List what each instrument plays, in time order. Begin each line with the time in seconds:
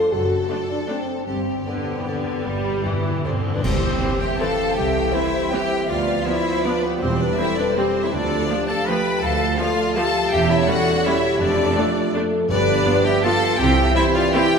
Already playing: french horn section A4, violin section C5
0.12 double bass section F#1, cello section F#2, french horn section F#4, violin section A4
0.49 viola section A3 D4, violin section C5
0.69 french horn section D4
0.88 viola section A3 D4, french horn section C4, violin section C5
1.26 double bass section G1, timpani G2, cello section G2, french horn section C4, violin section G4
1.50 timpani G2
1.58 timpani G2
1.66 timpani G2, viola section D3, french horn section B3, violin section D5
1.75 timpani G2
1.83 timpani G2
1.92 timpani G2
1.99 timpani G2, viola section E3
2.07 timpani G2, viola section D3, violin section D5
2.16 timpani G2
2.24 timpani G2
2.31 timpani G2
2.39 timpani G2
2.46 double bass section G1, timpani G2, cello section G2, viola section G3
2.53 timpani G2
2.60 timpani G2
2.69 timpani G2
2.77 timpani G2
2.85 timpani G2, viola section E3, violin section D5
2.93 timpani G2
3.01 timpani G2
3.09 timpani G2
3.17 timpani G2
3.25 timpani G2, viola section D3, clarinet C4, violin section C4 C5 D5, flute section G4
3.33 timpani G2
3.40 timpani G2
3.48 timpani G2
3.54 timpani G2, violin section D4 D5, clarinet D4, flute section B4
3.63 double bass section C2, cello section C2, timpani C3, trombone section E3 C4, violin section C4 C5, clarinet C4, flute section G4, concert bass drum, crash
4.02 viola section E3 C4, french horn section G4
4.20 violin section G4 G5, clarinet G4, flute section E5
4.39 viola section E3 C4, violin section A4 A5, clarinet A4, french horn section A4, flute section F5
4.75 double bass section C2, cello section C2, violin section G4 G5, clarinet G4, flute section E5
5.13 viola section E3 C4, violin section E4 E5, clarinet E4, french horn section G4, flute section C5
5.52 viola section E3 C4, french horn section E4, violin section G4 G5, clarinet G4, flute section E5
5.88 double bass section D2, cello section D2, trombone section F3 B3, french horn section F4, clarinet F4, violin section F4 F5, flute section D5
6.25 viola section F3 B3, violin section E4 E5, clarinet E4, flute section C5
6.64 viola section F3 B3, clarinet D4, violin section D4 D5, flute section B4
6.82 violin section B3 B4, clarinet B3, flute section G4
7.00 double bass section E1, cello section E2, trombone section G3 C4, violin section C4 C5, clarinet C4, flute section G4, french horn section G4
7.19 clarinet D4, violin section D4 D5, flute section B4
7.37 viola section G3 C4, clarinet E4, violin section E4 E5, french horn section A4, flute section C5
7.57 clarinet D4, violin section D4 D5, flute section B4
7.76 viola section G3 C4, clarinet C4, violin section C4 C5, french horn section G4, flute section G4
8.04 clarinet E4, violin section E4 E5, flute section C5
8.12 cello section D2, double bass section D2, trombone section F3 A3, clarinet D4, violin section D4 D5, french horn section F4, flute section A4
8.49 viola section F3 A3, french horn section G4
8.68 clarinet A4, violin section A4 A5, flute section F5
8.87 viola section F3 A3, clarinet B4, violin section B4 B5, flute section G5
9.22 double bass section D2, cello section D2, french horn section F4, clarinet A4, violin section A4 A5, flute section F5
9.58 viola section F3 A3, clarinet F4, violin section F4 F5, french horn section A4, flute section D5
9.96 viola section F3 A3, french horn section G4, violin section A4 A5, clarinet A4, flute section F5
10.31 double bass section E1, cello section E2, trombone section E3 C#4, violin section G4 G5, clarinet G4, flute section E5
10.49 clarinet E4, violin section E4 E5, flute section C#5
10.67 viola section G3 C#4, violin section F#4 F#5, clarinet F#4, french horn section A4, flute section D5
11.05 viola section G3 C#4, clarinet E4, violin section E4 E5, french horn section G4, flute section C#5
11.41 double bass section F1, cello section F2, trombone section F3 A3, violin section D4 D5, clarinet D4, flute section A4
11.77 viola section A3 D4, french horn section F4
12.15 viola section A3 D4, french horn section A4
12.49 double bass section G1, timpani G2, cello section G2, trombone section B3, violin section D4 D5, clarinet D4, french horn section G4, flute section B4
12.85 viola section B3 F4
13.04 violin section G4 G5, clarinet G4, flute section E5
13.23 viola section B3 F4, french horn section F4, violin section A4 A5, clarinet A4, flute section F5
13.58 double bass section C2, cello section C3, trombone section E3 C4, french horn section E4, violin section G4 G5, clarinet G4, flute section E5
13.95 viola section C4 E4, violin section E4 E5, clarinet E4, french horn section G4, flute section C5
14.15 clarinet F4, violin section F4 F5, flute section D5
14.33 viola section C4 E4, french horn section E4, violin section G4 G5, clarinet G4, flute section E5